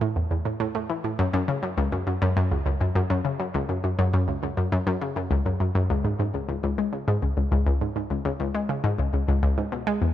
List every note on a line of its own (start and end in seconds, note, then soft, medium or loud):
0.01 0.15 A2 loud
0.16 0.26 E2 medium
0.31 0.41 E2 medium
0.45 0.55 A2 medium
0.60 0.66 A2 loud
0.75 0.85 A2 medium
0.89 0.99 E3 medium
1.04 1.14 A2 medium
1.19 1.25 F#2 medium
1.33 1.43 F#2 loud
1.48 1.58 C#3 medium
1.63 1.73 F#2 medium
1.78 1.87 C#2 medium
1.92 2.02 F#2 medium
2.07 2.17 F#2 medium
2.22 2.35 F#2 loud
2.37 2.51 F#2 loud
2.51 2.61 C#2 medium
2.66 2.76 C#2 medium
2.81 2.91 F#2 medium
2.95 3.01 F#2 loud
3.10 3.20 F#2 medium
3.25 3.35 C#3 medium
3.40 3.49 F#2 medium
3.54 3.64 C#2 loud
3.69 3.79 F#2 medium
3.84 3.94 F#2 medium
3.99 4.12 F#2 loud
4.13 4.27 F#2 loud
4.28 4.38 C#2 medium
4.43 4.52 C#2 medium
4.57 4.67 F#2 medium
4.72 4.78 F#2 loud
4.87 4.97 F#2 loud
5.01 5.11 C#3 medium
5.16 5.26 F#2 medium
5.31 5.41 C#2 loud
5.46 5.55 F#2 medium
5.60 5.70 F#2 medium
5.75 5.89 F#2 loud
5.90 6.04 C#2 loud
6.04 6.14 G#2 medium
6.19 6.29 G#2 medium
6.34 6.44 C#2 medium
6.49 6.54 C#2 medium
6.63 6.73 C#2 loud
6.78 6.88 G#3 medium
6.93 7.02 C#3 medium
7.08 7.17 G#2 loud
7.23 7.32 C#2 medium
7.37 7.47 C#2 medium
7.52 7.66 C#2 loud
7.67 7.80 C#2 loud
7.81 7.91 G#2 medium
7.96 8.06 G#2 medium
8.10 8.20 C#2 medium
8.25 8.31 C#2 loud
8.40 8.50 C#2 loud
8.54 8.64 G#3 medium
8.69 8.79 C#3 medium
8.84 8.94 G#2 medium
8.99 9.08 C#2 medium
9.13 9.23 C#2 medium
9.28 9.42 C#2 loud
9.43 9.57 C#2 loud
9.58 9.67 G#2 medium
9.72 9.82 B2 medium
9.87 10.01 G#3 loud
10.02 10.11 E2 medium